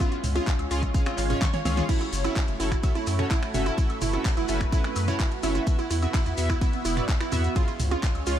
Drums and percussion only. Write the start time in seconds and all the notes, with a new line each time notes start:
0.00 closed hi-hat, mid tom, high woodblock, maracas
0.12 closed hi-hat, maracas
0.24 mid tom, open hi-hat, maracas
0.36 closed hi-hat, high conga, high woodblock, maracas
0.47 kick, clap, closed hi-hat, maracas
0.59 closed hi-hat, high woodblock, maracas
0.71 open hi-hat, maracas
0.82 kick, closed hi-hat, high woodblock, maracas
0.94 kick, closed hi-hat, maracas
1.06 finger snap, closed hi-hat, high conga, high woodblock, maracas
1.18 clap, open hi-hat, maracas
1.30 closed hi-hat, mid tom, maracas
1.42 kick, snare, clap, closed hi-hat, high woodblock, maracas
1.53 snare, closed hi-hat, maracas
1.65 snare, open hi-hat, high conga, high woodblock, maracas
1.77 snare, closed hi-hat, maracas
1.89 kick, closed hi-hat, crash, ride, maracas
2.01 closed hi-hat, high woodblock, maracas
2.13 open hi-hat, maracas
2.24 closed hi-hat, high conga, high woodblock, maracas
2.36 kick, clap, closed hi-hat, ride, maracas
2.48 closed hi-hat, maracas
2.60 open hi-hat, high woodblock, maracas
2.72 finger snap, kick, closed hi-hat, maracas
2.83 kick, closed hi-hat, ride, high woodblock, maracas
2.95 closed hi-hat, high conga, maracas
3.07 open hi-hat, high woodblock, maracas
3.19 finger snap, closed hi-hat, mid tom, maracas
3.30 kick, clap, closed hi-hat, ride, high woodblock, maracas
3.43 finger snap, closed hi-hat, maracas
3.54 mid tom, open hi-hat, high conga, maracas
3.66 closed hi-hat, high woodblock, maracas
3.78 kick, closed hi-hat, ride, maracas
3.90 closed hi-hat, high woodblock, maracas
4.01 mid tom, open hi-hat, maracas
4.13 closed hi-hat, high conga, high woodblock, maracas
4.25 kick, clap, closed hi-hat, ride, maracas
4.37 closed hi-hat, high woodblock, maracas
4.48 open hi-hat, maracas
4.61 finger snap, kick, closed hi-hat, maracas
4.72 kick, closed hi-hat, ride, high woodblock, maracas
4.84 finger snap, closed hi-hat, high conga, maracas
4.96 open hi-hat, high woodblock, maracas
5.08 closed hi-hat, mid tom, maracas
5.20 kick, clap, closed hi-hat, ride, high woodblock, maracas
5.31 closed hi-hat, maracas
5.43 open hi-hat, high conga, high woodblock, maracas
5.55 closed hi-hat, maracas
5.67 kick, closed hi-hat, ride, maracas
5.79 closed hi-hat, high woodblock, maracas
5.90 open hi-hat, maracas
6.02 closed hi-hat, high conga, high woodblock, maracas
6.14 kick, clap, closed hi-hat, ride, maracas
6.26 closed hi-hat, high woodblock, maracas
6.37 open hi-hat, maracas
6.49 finger snap, kick, high woodblock, maracas
6.61 kick, closed hi-hat, ride, maracas
6.73 closed hi-hat, high conga, maracas
6.85 open hi-hat, high woodblock, maracas
6.97 finger snap, closed hi-hat, mid tom, maracas
7.09 kick, clap, closed hi-hat, ride, high woodblock, maracas
7.21 finger snap, closed hi-hat, maracas
7.32 mid tom, open hi-hat, high conga, high woodblock, maracas
7.44 closed hi-hat, maracas
7.56 kick, closed hi-hat, mid tom, ride, high woodblock, maracas
7.68 closed hi-hat, maracas
7.80 mid tom, open hi-hat, maracas
7.91 closed hi-hat, high conga, high woodblock, maracas
8.03 kick, clap, closed hi-hat, ride, maracas
8.15 closed hi-hat, high woodblock, maracas
8.26 open hi-hat, maracas